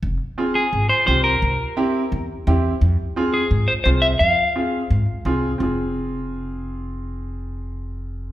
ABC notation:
X:1
M:4/4
L:1/8
Q:1/4=173
K:Fm
V:1 name="Clean electric guitar"
z3 A2 c c B- | B4- B z3 | z3 A2 c c =e | f6 z2 |
z8 | z8 |]
V:2 name="Upright piano"
z2 [CFA] z3 [CFG] z | z2 [C=EG] z3 [CEG] z | z2 [CFA] z3 [CFA] z | z2 [CFA] z3 [CFA] z |
[CFA]8- | [CFA]8 |]
V:3 name="Upright bass" clef=bass
F,,, z3 A,,, z C,,2 | C,, z3 =E,, z E,,2 | F,, z3 A,, z C,,2 | F,, z3 A,, z C,,2 |
F,,,8- | F,,,8 |]